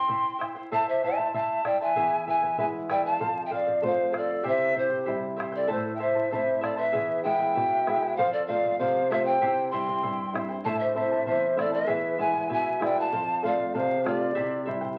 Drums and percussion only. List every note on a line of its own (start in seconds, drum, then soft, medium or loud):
0.09 bombo low medium
0.41 bombo rim medium
0.41 bombo low medium
0.72 bombo low medium
1.04 bombo low medium
1.19 bombo low medium
1.34 bombo low medium
1.65 bombo rim soft
1.65 bombo low medium
1.96 bombo low medium
2.27 bombo low medium
2.43 bombo low medium
2.58 bombo low medium
2.90 bombo rim medium
2.90 bombo low medium
3.21 bombo low medium
3.52 bombo low medium
3.68 bombo low medium
3.84 bombo low medium
4.14 bombo rim medium
4.14 bombo low medium
4.45 bombo low medium
4.76 bombo low medium
4.92 bombo low soft
5.08 bombo low medium
5.40 bombo rim medium
5.40 bombo low medium
5.71 bombo low medium
6.16 bombo low soft
6.33 bombo low medium
6.64 bombo rim medium
6.64 bombo low medium
6.95 bombo low medium
7.25 bombo low medium
7.41 bombo low soft
7.57 bombo low medium
7.87 bombo rim medium
7.87 bombo low medium
8.19 bombo low medium
8.50 bombo low medium
8.65 bombo low medium
8.81 bombo low medium
9.12 bombo rim medium
9.12 bombo low medium
9.42 bombo low medium
9.73 bombo low medium
9.89 bombo low medium
10.04 bombo low medium
10.35 bombo rim medium
10.35 bombo low medium
10.66 bombo low medium
10.98 bombo low medium
11.12 bombo low medium
11.27 bombo low medium
11.59 bombo rim medium
11.59 bombo low medium
11.89 bombo low medium
12.20 bombo low medium
12.35 bombo low soft
12.51 bombo low medium
12.82 bombo rim medium
12.82 bombo low medium
13.13 bombo low medium
13.44 bombo low medium
13.59 bombo low medium
13.75 bombo low medium
14.06 bombo rim medium
14.06 bombo low medium
14.37 bombo low medium
14.68 bombo low medium
14.84 bombo low medium